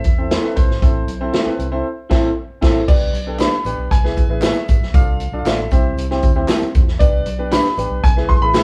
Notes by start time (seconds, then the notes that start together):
Already playing: E5
0.04 E2, kick, closed hi-hat
0.18 C4 E4 A4 C5
0.31 E4 A4 C5, snare, closed hi-hat
0.44 C4 E4 A4 B4
0.56 C2 C5, kick, closed hi-hat
0.68 G#1, snare
0.82 A1 C4 E4 A4 C5, kick, closed hi-hat
1.07 B1, closed hi-hat
1.20 C4 E4 A4 C5
1.33 E4 A4 C5, snare, closed hi-hat
1.46 C4 E4 A4 B4, muted fingered electric bass stroke
1.59 C2, closed hi-hat
1.71 C4 E4 A4 C5
2.09 A1 C4 E4 A4 C5, kick, snare, crash
2.61 A1 C4 E4 A4 C5, kick, snare, crash
2.88 C2 B3 D4 G4 B4 D5, kick, crash, tambourine
3.13 B1, closed hi-hat, tambourine
3.27 B3 D4 G4 A4
3.39 D4 G4 B4 B5, snare, clap, closed hi-hat, tambourine
3.64 A1 B3 D4 G4 B4, closed hi-hat, tambourine
3.78 B1
3.91 C2 G#5, kick, closed hi-hat
4.04 B3 E4 G#4 B4, snare
4.17 B1, kick, closed hi-hat, tambourine
4.29 A1 B3 E4 G#4 B4
4.42 E4 G#4 B4 E5, snare, clap, closed hi-hat, tambourine
4.68 G#1, kick, closed hi-hat, tambourine
4.81 B1, snare
4.94 C2 D4 F4 A4 D5 F5, kick, closed hi-hat, tambourine
5.20 closed hi-hat, tambourine
5.32 B1 D4 F4 A4 D5
5.39 F5
5.45 A1 F4 A4 D5 E5, snare, clap, closed hi-hat, tambourine
5.71 C2 C4 E4 G4 C5, kick, closed hi-hat, tambourine
5.97 C2, closed hi-hat, tambourine
6.11 C4 E4 G4 C5, snare
6.22 D2, kick, closed hi-hat, tambourine
6.36 C4 E4 G4 C5
6.48 E4 G4 C5, snare, clap, closed hi-hat, tambourine
6.62 muted fingered electric bass stroke
6.75 E2, kick, closed hi-hat, tambourine
6.88 snare
6.99 C2 B3 D4 G4 B4 D5, kick, closed hi-hat, tambourine
7.26 B1, closed hi-hat, tambourine
7.39 B3 D4 G4 B4
7.51 D4 G4 B4 B5, snare, clap, closed hi-hat, tambourine
7.65 snare
7.77 A1 B3 D4 G4 B4, closed hi-hat, tambourine
7.90 B1
8.04 C2 G#5, kick, closed hi-hat, tambourine
8.17 B3 E4 G#4 B4, snare
8.29 B1 C6, kick, closed hi-hat, tambourine
8.41 A1 B3 E4 G#4 A#4 B5
8.48 B4
8.54 E4 G#4 B4, snare, clap, closed hi-hat, tambourine